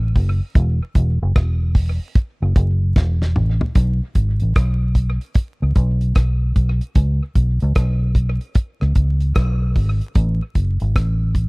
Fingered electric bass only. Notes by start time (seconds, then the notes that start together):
Already playing: A1
0.16 F#1
0.56 E1
0.96 E1
1.22 F#1
1.36 E1
2.42 F#1
2.57 F#1
2.97 E1
3.37 A1
3.76 B1
4.16 G#1
4.42 A1
4.56 B1
5.62 C#2
5.76 B1
6.17 B1
6.56 B1
6.96 C#2
7.36 B1
7.62 C#2
7.76 B1
8.82 C#2
8.96 C#2
9.36 B1
9.76 G#1
10.16 A1
10.56 F#1
10.81 G#1
10.96 A1